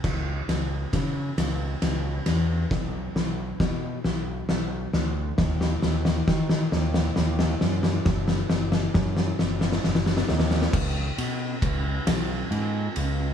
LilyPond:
<<
  \new Staff \with { instrumentName = "Fingered electric bass" } { \clef bass \time 6/8 \key cis \minor \tempo 4. = 45 cis,8 cis,8 cis8 cis,8 cis,8 e,8 | b,,8 b,,8 b,8 b,,8 b,,8 d,8 | dis,8 dis,8 dis8 dis,8 dis,8 fis,8 | fis,,8 fis,,8 fis,8 fis,,8 fis,,8 dis,8 |
cis,8 b,8 cis,8 b,,8 gis,8 cis,8 | }
  \new DrumStaff \with { instrumentName = "Drums" } \drummode { \time 6/8 <cymc bd sn>8 <cymr sn>8 <bd cymr sn>8 <cymr sn>8 <cymr sn>8 <cymr sn>8 | <bd sn>8 sn8 <bd sn>8 sn8 sn8 sn8 | <bd sn>16 sn16 sn16 sn16 <bd sn>16 sn16 sn16 sn16 sn16 sn16 sn16 sn16 | <bd sn>16 sn16 sn16 sn16 <bd sn>16 sn16 sn16 sn32 sn32 sn32 sn32 sn32 sn32 sn32 sn32 sn32 sn32 |
<cymc bd>8 cymr8 <bd cymr>8 <cymr sn>8 cymr8 cymr8 | }
>>